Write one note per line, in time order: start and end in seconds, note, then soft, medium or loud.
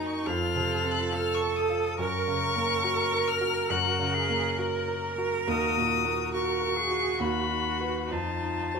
0.00 0.23 F#2 medium
0.00 0.29 F#3 medium
0.00 0.29 A#3 medium
0.00 0.26 D#4 medium
0.00 0.28 D#4 medium
0.00 0.29 D#4 medium
0.00 0.16 A#4 medium
0.06 0.28 C#6 medium
0.26 1.96 F2 medium
0.26 1.15 F4 medium
0.26 1.98 A4 medium
0.26 0.93 F6 loud
0.56 1.01 C3 medium
0.84 1.30 C4 medium
0.91 1.14 F#6 loud
1.12 1.59 F4 medium
1.12 1.99 A4 medium
1.12 1.36 F6 loud
1.34 1.57 C#6 loud
1.41 1.88 A4 medium
1.56 1.98 D#6 medium
1.70 1.99 F4 medium
1.99 3.66 F#2 medium
1.99 5.49 A#4 medium
1.99 3.72 A#4 medium
1.99 3.29 C#6 loud
2.28 2.74 C#3 medium
2.56 3.02 A#3 medium
2.84 3.30 F#4 medium
3.13 3.59 A#4 medium
3.28 3.72 F6 loud
3.41 3.88 F#4 medium
3.70 5.43 F#2 medium
3.70 4.15 F#4 medium
3.70 5.03 F#6 medium
3.99 4.46 C#3 medium
4.14 4.59 G#4 medium
4.29 4.76 A#3 medium
4.57 5.06 F#4 medium
4.57 6.33 A#4 medium
4.88 5.36 A#4 medium
5.18 5.48 F#4 medium
5.47 7.16 D#2 medium
5.47 8.11 F#4 medium
5.47 6.30 D#6 loud
5.77 6.23 A#2 medium
6.05 6.51 A#3 medium
6.34 6.80 F#4 medium
6.34 6.78 A#4 medium
6.34 7.22 C#6 loud
6.61 7.08 A#4 medium
6.76 7.21 G#4 medium
6.91 7.20 F#4 medium
7.20 8.09 D#2 medium
7.20 8.12 F#4 medium
7.20 8.13 B5 loud
7.50 7.99 D#4 medium
7.81 8.08 F#4 soft
7.81 8.08 B4 medium
8.11 8.80 F2 medium
8.11 8.80 D#4 medium
8.11 8.80 F4 medium
8.11 8.80 A5 loud
8.42 8.80 D#4 medium
8.74 8.80 F#4 medium
8.74 8.80 C5 medium